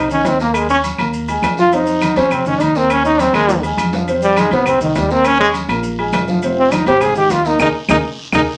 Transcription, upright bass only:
0, 0, Header, 1, 2, 480
1, 0, Start_track
1, 0, Tempo, 293542
1, 899, Time_signature, 4, 2, 24, 8
1, 14014, End_track
2, 0, Start_track
2, 0, Title_t, "Upright bass"
2, 0, Program_c, 0, 32
2, 0, Note_on_c, 0, 36, 88
2, 363, Note_off_c, 0, 36, 0
2, 402, Note_on_c, 0, 39, 94
2, 1523, Note_off_c, 0, 39, 0
2, 1609, Note_on_c, 0, 39, 92
2, 2285, Note_off_c, 0, 39, 0
2, 2327, Note_on_c, 0, 41, 92
2, 3446, Note_off_c, 0, 41, 0
2, 3532, Note_on_c, 0, 41, 101
2, 4208, Note_off_c, 0, 41, 0
2, 4253, Note_on_c, 0, 39, 88
2, 5370, Note_off_c, 0, 39, 0
2, 5448, Note_on_c, 0, 39, 94
2, 6126, Note_off_c, 0, 39, 0
2, 6168, Note_on_c, 0, 41, 92
2, 7288, Note_off_c, 0, 41, 0
2, 7372, Note_on_c, 0, 36, 99
2, 8048, Note_off_c, 0, 36, 0
2, 8097, Note_on_c, 0, 39, 89
2, 9212, Note_off_c, 0, 39, 0
2, 9297, Note_on_c, 0, 34, 98
2, 9970, Note_off_c, 0, 34, 0
2, 10016, Note_on_c, 0, 29, 99
2, 11131, Note_off_c, 0, 29, 0
2, 11220, Note_on_c, 0, 32, 98
2, 11891, Note_off_c, 0, 32, 0
2, 11936, Note_on_c, 0, 39, 92
2, 12385, Note_off_c, 0, 39, 0
2, 12414, Note_on_c, 0, 39, 88
2, 12597, Note_off_c, 0, 39, 0
2, 12894, Note_on_c, 0, 39, 113
2, 13076, Note_off_c, 0, 39, 0
2, 13618, Note_on_c, 0, 39, 99
2, 13797, Note_off_c, 0, 39, 0
2, 14014, End_track
0, 0, End_of_file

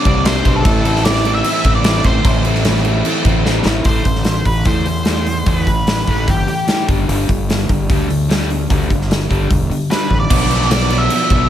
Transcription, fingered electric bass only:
0, 0, Header, 1, 2, 480
1, 0, Start_track
1, 0, Key_signature, 0, "minor"
1, 0, Tempo, 401875
1, 778, Time_signature, 4, 2, 24, 8
1, 13725, End_track
2, 0, Start_track
2, 0, Title_t, "Fingered electric bass"
2, 0, Program_c, 0, 33
2, 65, Note_on_c, 0, 36, 89
2, 498, Note_off_c, 0, 36, 0
2, 541, Note_on_c, 0, 35, 87
2, 778, Note_off_c, 0, 35, 0
2, 778, Note_on_c, 0, 33, 108
2, 1682, Note_off_c, 0, 33, 0
2, 1962, Note_on_c, 0, 33, 88
2, 2399, Note_off_c, 0, 33, 0
2, 2440, Note_on_c, 0, 33, 87
2, 2660, Note_off_c, 0, 33, 0
2, 2682, Note_on_c, 0, 33, 101
2, 3591, Note_off_c, 0, 33, 0
2, 3882, Note_on_c, 0, 33, 88
2, 4318, Note_off_c, 0, 33, 0
2, 4356, Note_on_c, 0, 33, 87
2, 4577, Note_off_c, 0, 33, 0
2, 4594, Note_on_c, 0, 33, 86
2, 4816, Note_off_c, 0, 33, 0
2, 4840, Note_on_c, 0, 33, 76
2, 5279, Note_off_c, 0, 33, 0
2, 5321, Note_on_c, 0, 33, 82
2, 5541, Note_off_c, 0, 33, 0
2, 5558, Note_on_c, 0, 40, 77
2, 6478, Note_off_c, 0, 40, 0
2, 6522, Note_on_c, 0, 40, 87
2, 6745, Note_off_c, 0, 40, 0
2, 6770, Note_on_c, 0, 33, 75
2, 7210, Note_off_c, 0, 33, 0
2, 7259, Note_on_c, 0, 33, 82
2, 7477, Note_off_c, 0, 33, 0
2, 7496, Note_on_c, 0, 31, 83
2, 7716, Note_off_c, 0, 31, 0
2, 8224, Note_on_c, 0, 31, 81
2, 8443, Note_off_c, 0, 31, 0
2, 8462, Note_on_c, 0, 31, 93
2, 8682, Note_off_c, 0, 31, 0
2, 8704, Note_on_c, 0, 31, 80
2, 9144, Note_off_c, 0, 31, 0
2, 9186, Note_on_c, 0, 31, 78
2, 9406, Note_off_c, 0, 31, 0
2, 9434, Note_on_c, 0, 38, 83
2, 10346, Note_off_c, 0, 38, 0
2, 10397, Note_on_c, 0, 38, 91
2, 10614, Note_off_c, 0, 38, 0
2, 10631, Note_on_c, 0, 31, 82
2, 11070, Note_off_c, 0, 31, 0
2, 11115, Note_on_c, 0, 31, 81
2, 11333, Note_off_c, 0, 31, 0
2, 11356, Note_on_c, 0, 28, 88
2, 11573, Note_off_c, 0, 28, 0
2, 12067, Note_on_c, 0, 33, 76
2, 12287, Note_off_c, 0, 33, 0
2, 12307, Note_on_c, 0, 35, 103
2, 13217, Note_off_c, 0, 35, 0
2, 13502, Note_on_c, 0, 35, 90
2, 13725, Note_off_c, 0, 35, 0
2, 13725, End_track
0, 0, End_of_file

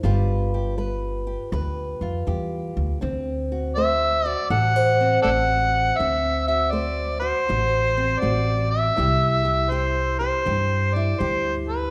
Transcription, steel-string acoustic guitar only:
0, 0, Header, 1, 2, 480
1, 0, Start_track
1, 0, Tempo, 744417
1, 22, Time_signature, 4, 2, 24, 8
1, 7676, End_track
2, 0, Start_track
2, 0, Title_t, "Steel-string acoustic guitar"
2, 0, Program_c, 0, 25
2, 20, Note_on_c, 0, 43, 79
2, 24, Note_on_c, 0, 55, 67
2, 26, Note_on_c, 0, 65, 60
2, 31, Note_on_c, 0, 67, 67
2, 36, Note_on_c, 0, 71, 68
2, 341, Note_off_c, 0, 67, 0
2, 349, Note_on_c, 0, 67, 57
2, 469, Note_off_c, 0, 43, 0
2, 493, Note_off_c, 0, 55, 0
2, 497, Note_off_c, 0, 71, 0
2, 501, Note_on_c, 0, 55, 66
2, 504, Note_on_c, 0, 71, 65
2, 810, Note_off_c, 0, 67, 0
2, 817, Note_on_c, 0, 67, 56
2, 949, Note_off_c, 0, 55, 0
2, 981, Note_off_c, 0, 71, 0
2, 983, Note_on_c, 0, 50, 60
2, 988, Note_on_c, 0, 71, 68
2, 1295, Note_off_c, 0, 65, 0
2, 1303, Note_on_c, 0, 65, 54
2, 1430, Note_off_c, 0, 50, 0
2, 1456, Note_off_c, 0, 67, 0
2, 1461, Note_on_c, 0, 55, 61
2, 1465, Note_on_c, 0, 67, 60
2, 1909, Note_off_c, 0, 55, 0
2, 1923, Note_off_c, 0, 67, 0
2, 1925, Note_off_c, 0, 65, 0
2, 1926, Note_off_c, 0, 71, 0
2, 1941, Note_on_c, 0, 50, 66
2, 1946, Note_on_c, 0, 60, 60
2, 2269, Note_on_c, 0, 66, 58
2, 2389, Note_off_c, 0, 50, 0
2, 2430, Note_on_c, 0, 57, 71
2, 2438, Note_on_c, 0, 72, 74
2, 2742, Note_off_c, 0, 66, 0
2, 2745, Note_on_c, 0, 66, 58
2, 2873, Note_off_c, 0, 57, 0
2, 2904, Note_off_c, 0, 72, 0
2, 2906, Note_on_c, 0, 69, 64
2, 2911, Note_on_c, 0, 45, 70
2, 3068, Note_off_c, 0, 69, 0
2, 3068, Note_on_c, 0, 72, 61
2, 3226, Note_off_c, 0, 60, 0
2, 3228, Note_on_c, 0, 60, 59
2, 3353, Note_off_c, 0, 45, 0
2, 3372, Note_off_c, 0, 66, 0
2, 3377, Note_on_c, 0, 57, 66
2, 3381, Note_on_c, 0, 66, 61
2, 3827, Note_off_c, 0, 57, 0
2, 3841, Note_off_c, 0, 66, 0
2, 3863, Note_on_c, 0, 50, 67
2, 3865, Note_off_c, 0, 72, 0
2, 3867, Note_off_c, 0, 60, 0
2, 3869, Note_on_c, 0, 60, 55
2, 4180, Note_on_c, 0, 66, 66
2, 4309, Note_off_c, 0, 50, 0
2, 4335, Note_on_c, 0, 57, 68
2, 4339, Note_on_c, 0, 72, 67
2, 4645, Note_off_c, 0, 66, 0
2, 4653, Note_on_c, 0, 66, 65
2, 4785, Note_off_c, 0, 57, 0
2, 4819, Note_off_c, 0, 66, 0
2, 4825, Note_on_c, 0, 45, 69
2, 4828, Note_on_c, 0, 66, 65
2, 5133, Note_off_c, 0, 60, 0
2, 5141, Note_on_c, 0, 60, 59
2, 5271, Note_off_c, 0, 45, 0
2, 5293, Note_off_c, 0, 66, 0
2, 5298, Note_on_c, 0, 57, 68
2, 5301, Note_on_c, 0, 66, 68
2, 5747, Note_off_c, 0, 57, 0
2, 5760, Note_off_c, 0, 72, 0
2, 5761, Note_off_c, 0, 66, 0
2, 5780, Note_on_c, 0, 48, 81
2, 5783, Note_off_c, 0, 60, 0
2, 5784, Note_on_c, 0, 55, 62
2, 5788, Note_on_c, 0, 64, 59
2, 5796, Note_on_c, 0, 67, 69
2, 6091, Note_off_c, 0, 67, 0
2, 6094, Note_on_c, 0, 67, 68
2, 6228, Note_off_c, 0, 48, 0
2, 6255, Note_off_c, 0, 55, 0
2, 6258, Note_on_c, 0, 55, 67
2, 6264, Note_off_c, 0, 67, 0
2, 6267, Note_on_c, 0, 67, 73
2, 6579, Note_off_c, 0, 67, 0
2, 6581, Note_on_c, 0, 67, 64
2, 6707, Note_off_c, 0, 55, 0
2, 6741, Note_on_c, 0, 55, 68
2, 6748, Note_off_c, 0, 67, 0
2, 6751, Note_on_c, 0, 67, 72
2, 7060, Note_off_c, 0, 64, 0
2, 7067, Note_on_c, 0, 64, 61
2, 7189, Note_off_c, 0, 55, 0
2, 7222, Note_on_c, 0, 55, 64
2, 7224, Note_off_c, 0, 67, 0
2, 7226, Note_on_c, 0, 67, 76
2, 7670, Note_off_c, 0, 55, 0
2, 7676, Note_off_c, 0, 64, 0
2, 7676, Note_off_c, 0, 67, 0
2, 7676, End_track
0, 0, End_of_file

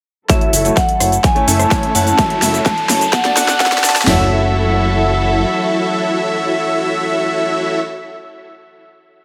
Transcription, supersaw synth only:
0, 0, Header, 1, 2, 480
1, 0, Start_track
1, 0, Key_signature, 3, "minor"
1, 0, Tempo, 472441
1, 300, Time_signature, 4, 2, 24, 8
1, 9397, End_track
2, 0, Start_track
2, 0, Title_t, "Supersaw synth"
2, 0, Program_c, 0, 81
2, 300, Note_on_c, 0, 64, 86
2, 300, Note_on_c, 0, 66, 78
2, 300, Note_on_c, 0, 69, 75
2, 300, Note_on_c, 0, 73, 80
2, 300, Note_on_c, 0, 76, 88
2, 511, Note_off_c, 0, 64, 0
2, 511, Note_off_c, 0, 66, 0
2, 511, Note_off_c, 0, 69, 0
2, 511, Note_off_c, 0, 73, 0
2, 511, Note_off_c, 0, 76, 0
2, 540, Note_on_c, 0, 64, 99
2, 540, Note_on_c, 0, 66, 90
2, 540, Note_on_c, 0, 69, 89
2, 540, Note_on_c, 0, 73, 88
2, 540, Note_on_c, 0, 76, 106
2, 722, Note_off_c, 0, 64, 0
2, 722, Note_off_c, 0, 66, 0
2, 722, Note_off_c, 0, 69, 0
2, 722, Note_off_c, 0, 73, 0
2, 722, Note_off_c, 0, 76, 0
2, 1500, Note_on_c, 0, 61, 84
2, 1500, Note_on_c, 0, 64, 82
2, 1500, Note_on_c, 0, 73, 78
2, 1500, Note_on_c, 0, 76, 93
2, 1501, Note_on_c, 0, 69, 80
2, 1951, Note_off_c, 0, 61, 0
2, 1952, Note_off_c, 0, 64, 0
2, 1952, Note_off_c, 0, 69, 0
2, 1952, Note_off_c, 0, 73, 0
2, 1952, Note_off_c, 0, 76, 0
2, 1980, Note_on_c, 0, 61, 74
2, 1980, Note_on_c, 0, 64, 71
2, 1980, Note_on_c, 0, 69, 72
2, 1980, Note_on_c, 0, 73, 71
2, 1980, Note_on_c, 0, 78, 86
2, 2191, Note_off_c, 0, 61, 0
2, 2191, Note_off_c, 0, 64, 0
2, 2191, Note_off_c, 0, 69, 0
2, 2191, Note_off_c, 0, 73, 0
2, 2191, Note_off_c, 0, 78, 0
2, 2220, Note_on_c, 0, 64, 85
2, 2220, Note_on_c, 0, 66, 79
2, 2220, Note_on_c, 0, 69, 78
2, 2220, Note_on_c, 0, 73, 76
2, 2220, Note_on_c, 0, 76, 97
2, 2431, Note_off_c, 0, 64, 0
2, 2431, Note_off_c, 0, 66, 0
2, 2431, Note_off_c, 0, 69, 0
2, 2431, Note_off_c, 0, 73, 0
2, 2431, Note_off_c, 0, 76, 0
2, 2460, Note_on_c, 0, 64, 98
2, 2460, Note_on_c, 0, 66, 91
2, 2460, Note_on_c, 0, 69, 92
2, 2460, Note_on_c, 0, 73, 92
2, 2460, Note_on_c, 0, 76, 109
2, 2642, Note_off_c, 0, 64, 0
2, 2642, Note_off_c, 0, 66, 0
2, 2642, Note_off_c, 0, 69, 0
2, 2642, Note_off_c, 0, 73, 0
2, 2642, Note_off_c, 0, 76, 0
2, 3420, Note_on_c, 0, 62, 86
2, 3420, Note_on_c, 0, 66, 78
2, 3420, Note_on_c, 0, 69, 79
2, 3420, Note_on_c, 0, 74, 80
2, 3420, Note_on_c, 0, 78, 93
2, 3871, Note_off_c, 0, 62, 0
2, 3871, Note_off_c, 0, 66, 0
2, 3871, Note_off_c, 0, 69, 0
2, 3871, Note_off_c, 0, 74, 0
2, 3871, Note_off_c, 0, 78, 0
2, 3900, Note_on_c, 0, 62, 78
2, 3900, Note_on_c, 0, 66, 72
2, 3900, Note_on_c, 0, 69, 74
2, 3900, Note_on_c, 0, 74, 70
2, 3900, Note_on_c, 0, 81, 89
2, 4111, Note_off_c, 0, 62, 0
2, 4111, Note_off_c, 0, 66, 0
2, 4111, Note_off_c, 0, 69, 0
2, 4111, Note_off_c, 0, 74, 0
2, 4111, Note_off_c, 0, 81, 0
2, 4140, Note_on_c, 0, 64, 85
2, 4140, Note_on_c, 0, 66, 80
2, 4140, Note_on_c, 0, 69, 76
2, 4140, Note_on_c, 0, 73, 78
2, 4140, Note_on_c, 0, 76, 93
2, 7921, Note_off_c, 0, 64, 0
2, 7921, Note_off_c, 0, 66, 0
2, 7921, Note_off_c, 0, 69, 0
2, 7921, Note_off_c, 0, 73, 0
2, 7921, Note_off_c, 0, 76, 0
2, 9397, End_track
0, 0, End_of_file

